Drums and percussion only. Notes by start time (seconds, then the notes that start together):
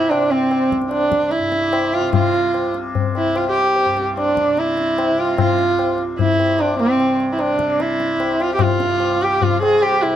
0.12 tabla na
0.32 tabla na
0.51 tabla na
0.72 tabla ke
0.82 tabla te
0.91 tabla na
1.12 tabla ke
1.31 tabla te
1.52 tabla te
1.73 tabla na
1.93 tabla na
2.13 tabla na, tabla ge
2.34 tabla te
2.54 tabla na
2.74 tabla te
2.95 tabla tin, tabla ge
3.15 tabla na
3.36 tabla na
3.56 tabla na
3.76 tabla na
3.97 tabla te
4.17 tabla na
4.37 tabla ke
4.57 tabla te
4.77 tabla te
4.98 tabla na
5.18 tabla na
5.38 tabla na, tabla ge
5.59 tabla te
5.79 tabla na
5.98 tabla te
6.19 tabla tin, tabla ge
6.39 tabla na
6.59 tabla na
6.79 tabla na
7.00 tabla na
7.20 tabla te
7.39 tabla na
7.59 tabla ke
7.80 tabla te
8.00 tabla te
8.20 tabla na
8.40 tabla na
8.59 tabla na, tabla ge
8.80 tabla te
9.00 tabla na
9.21 tabla te
9.42 tabla tin, tabla ge
9.63 tabla na
9.83 tabla na
10.03 tabla na